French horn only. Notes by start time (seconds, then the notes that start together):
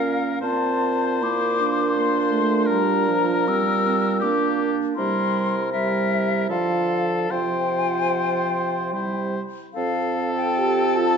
Already playing: A#3
0.42 C4
1.22 A#3
1.96 A#3
2.31 A3
2.69 G3
3.08 F3
3.48 G3
4.23 A#3
4.98 G3
5.74 G3
6.50 F3
7.31 F3
8.93 G3
10.58 G4
10.98 F4